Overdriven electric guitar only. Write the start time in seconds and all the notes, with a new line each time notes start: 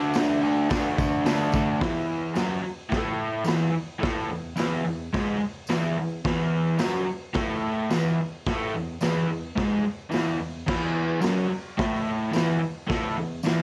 Already playing: D3 A3 D4
0.16 D3 A3 D4
0.41 D3 A3 D4
0.69 D3 A3 D4
0.97 D3 A3 D4
1.25 D3 A3 D4
1.54 D3 A3 D4
1.81 E2 E3
2.35 F#2 F#3
2.64 muted overdriven electric guitar stroke
2.89 A2 A3
3.45 E2 E3
3.73 muted overdriven electric guitar stroke
3.99 A2 A3
4.27 E2
4.56 E2 E3
4.85 E2
5.13 G#2 G#3
5.39 muted overdriven electric guitar stroke
5.69 E2 E3
5.99 E2
6.25 E2 E3
6.78 F#2 F#3
7.07 muted overdriven electric guitar stroke
7.34 A2 A3
7.90 E2 E3
8.21 muted overdriven electric guitar stroke
8.47 A2 A3
8.74 E2
9.01 E2 E3
9.27 E2
9.55 G#2 G#3
9.84 muted overdriven electric guitar stroke
10.10 E2 E3
10.39 E2
10.66 E2 E3
11.21 F#2 F#3
11.50 muted overdriven electric guitar stroke
11.78 A2 A3
12.31 E2 E3
12.61 muted overdriven electric guitar stroke
12.88 A2 A3
13.17 E2
13.44 E2 E3